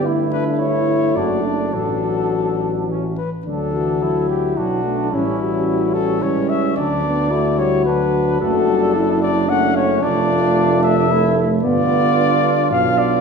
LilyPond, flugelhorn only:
\new Staff \with { instrumentName = "Flugelhorn" } { \time 3/4 \key d \major \tempo 4 = 110 e'2 d'4~ | d'2 cis'8 r8 | d'4 e'4 d'4 | cis'8 cis'2~ cis'8 |
d'4 e'4 d'4 | d'2 cis'4 | \key d \dorian d'2 e'4 | f'2 f'4 | }